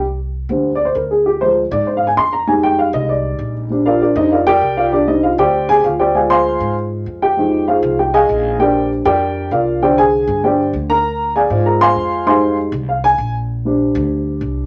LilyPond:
<<
  \new Staff \with { instrumentName = "Upright piano" } { \time 4/4 \key c \minor \tempo 4 = 196 << { r2 \tuplet 3/2 { r8 d''8 c''8 } bes'8 aes'8 | g'8 c''8 r8 d''8 \tuplet 3/2 { c''8 f''8 aes''8 } c'''8 bes''8 | aes''8 g''8 f''8 ees''8 d''4. r8 | r8 <f' bes' d'' f''>8 <d' g' bes' d''>8 <ees' ees''>8 <f' bes' d'' f''>8 <g' bes' d'' g''>4 <f' bes' d'' f''>8 |
<d' g' d''>8 <ees' ees''>8 <f' f''>8 <g' c'' d'' g''>4 <aes' aes''>8 <f' f''>8 <g' c'' d'' g''>8 | <aes' d'' f'' aes''>8 <c'' f'' aes'' c'''>4. r4. <g' g''>8~ | <g' g''>4 <f' aes' c'' f''>4 <g' g''>8 <aes' ees'' f'' aes''>4. | <g' bes' d'' g''>4 r8 <g' bes' d'' g''>4. <f' bes' d'' f''>4 |
<g' c'' d'' g''>8 <aes' aes''>4. <g' c'' d'' g''>4 r8 <bes' bes''>8~ | <bes' bes''>4 <aes' d'' f'' aes''>4 <bes' bes''>8 <c'' f'' aes'' c'''>4. | <c'' f'' aes'' c'''>4 r4 f''8 aes''4 r8 | r1 | } \\ { r4. <d g c'>8 r2 | r8 <f aes c'>8 r2. | <g aes ees'>1 | <g c' d'>4. <g c' d'>8 r2 |
r8 <g c' d'>8 r2. | <aes c' f'>1 | <f aes ees'>1 | <g c' d'>1 |
<d c' d'>2 <g c' d'>8 r4. | r4. <aes c' f'>2~ <aes c' f'>8 | <g aes ees'>4. r2 r8 | r8 <g c' d'>2.~ <g c' d'>8 | } >> }
  \new Staff \with { instrumentName = "Upright bass" } { \clef bass \time 4/4 \key c \minor c,4. d,4. d,4~ | d,4. aes,4. f,4~ | f,4. c,4. bes,,4~ | bes,,4. f,4. c,4~ |
c,4. d,4. d,4~ | d,4. aes,4. f,4~ | f,4. c,4. bes,,4~ | bes,,4. f,4. c,4~ |
c,4. g,4. d,4~ | d,4. aes,4. f,4~ | f,4. c,4. bes,,4~ | bes,,4. d,4. c,4 | }
>>